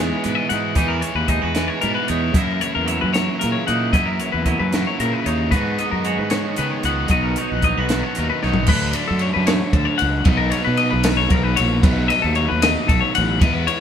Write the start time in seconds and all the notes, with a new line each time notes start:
Already playing: E3 G#3 D#4 E4 F#4 G#4 C#5
0.00 E3 G#3 B3
0.23 G#2 B2 E3 G#3 B3 E4 B4, closed hi-hat
0.35 D#5
0.49 G#2 G#3 B3 D#4 E4 F#5, closed hi-hat
0.75 E2 E3 G#3 B3 D#4 E4 D#5, kick, closed hi-hat
0.88 F#4 A#4
1.01 C#5, closed hi-hat
1.15 D#2 B4
1.28 G#3 D#4 D#5, kick, closed hi-hat
1.41 E2 F#4 B4
1.54 E3 G#3 B3 E4, snare, closed hi-hat
1.68 C#5
1.81 G#2 B2 E3 G#3 B3 E4 A#4, closed hi-hat
1.95 B4
2.08 E2 G#3 B3 D#4 E4 C#5, closed hi-hat
2.34 F#2 C#3 E3 A#3 E4 A#4, kick, closed hi-hat
2.61 C#5, closed hi-hat
2.75 E2 A#4
2.85 F#3 E4 C#5, closed hi-hat
3.01 F#2 B4
3.12 F#2 C#3 E3 A#3 E4 C#5, snare, closed hi-hat
3.39 C#3 E3 A#3 E4 A#4, closed hi-hat
3.44 A#2
3.52 C#5
3.66 A#2 E3 A#3 D#4 E4 F#5, closed hi-hat
3.93 F#2 C#3 E3 A#3 E4 D#5, kick, closed hi-hat
4.06 A#4
4.19 C#5, closed hi-hat
4.32 E2 B4
4.46 F#3 E4 D#5, kick, closed hi-hat
4.59 F#2 B4
4.73 F#2 C#3 E3 A#3 E4, snare, closed hi-hat
4.87 C#5
4.98 A#2 C#3 E3 A#3 E4 A#4, closed hi-hat
5.13 B4
5.24 D#2 E3 A#3 D#4 E4 C#5, closed hi-hat
5.51 G#2 D#3 G#3 B3 D#4 F#4 B4, kick, closed hi-hat
5.78 B3 D#5, closed hi-hat
5.91 F#2 A#4
6.05 G#3 F#4 C#5, closed hi-hat
6.18 G#2 B4
6.30 D#3 G#3 B3 D#4 C#5, snare, closed hi-hat
6.34 G#2
6.56 C#3 D#3 G#3 B3 D#4 B4, closed hi-hat
6.71 C#5
6.83 C#2 G#3 B3 D#4 F#5, closed hi-hat
7.08 B1 B2 D#3 F#3 B3 F#4 D#5, kick, closed hi-hat
7.13 D#4
7.23 A#4
7.36 C#5, closed hi-hat
7.40 D#4
7.52 A#1 B4
7.62 F#3 D#4 D#5, kick, closed hi-hat
7.77 B1 F#4 B4
7.89 B2 D#3 F#3 B3 D#4, snare, closed hi-hat
8.03 C#5
8.15 D#2 F#2 D#3 F#3 B3 D#4 A#4, closed hi-hat
8.30 B4
8.42 B1 F#3 B3 D#4 C#5, snare
8.54 floor tom
8.66 D2 D3 F#3 A3 B4, kick, crash
8.71 D4
8.93 D5, ride
9.08 F#2 A4
9.19 C#5, ride
9.34 F#2 B4
9.47 C#5, snare, ride
9.73 D2 A4, kick, ride
9.85 C#5
9.98 F#5, ride
10.02 C#2
10.24 B1 B2 F#3 B3 D#4 D#5, kick, ride
10.37 A#4
10.50 C#5, ride
10.64 B2 B4
10.77 D#5, ride
10.90 B1 B4
11.03 snare, ride
11.17 C#5
11.30 B1 A#4, kick, ride
11.43 B4
11.56 A#1 C#5, ride
11.83 B1 B2 F#3 A3 D#4 B4, kick, ride
12.08 D#5, ride
12.22 D#2 A4
12.35 C#5, ride
12.48 D#2 B4
12.62 D#5, snare, ride
12.88 B1 A4, kick, ride
13.00 C#5
13.15 A1 F#5, ride
13.41 E2 E3 G#3 B3 E4 D#5, kick, ride
13.54 B4
13.67 C#5, ride